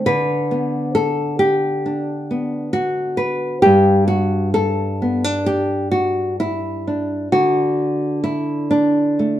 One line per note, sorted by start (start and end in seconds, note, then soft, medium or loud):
0.06 3.60 D3 medium
0.06 0.94 B4 loud
0.51 2.29 B3 soft
0.95 1.39 A4 medium
1.39 2.74 G4 medium
1.86 2.73 D4 soft
2.31 3.60 B3 soft
2.73 3.64 F#4 medium
3.17 3.62 B4 medium
3.62 7.28 G2 medium
3.62 4.07 G4 medium
4.08 4.54 F#4 medium
4.54 5.46 A4 medium
5.02 5.24 B3 soft
5.24 6.86 D4 soft
5.46 5.91 G4 medium
5.91 6.39 F#4 medium
6.40 7.32 E4 medium
6.87 7.28 D4 soft
7.32 9.40 D3 medium
7.32 8.23 F#4 medium
8.24 9.40 E4 medium
8.71 9.40 D4 medium
9.19 9.40 A3 soft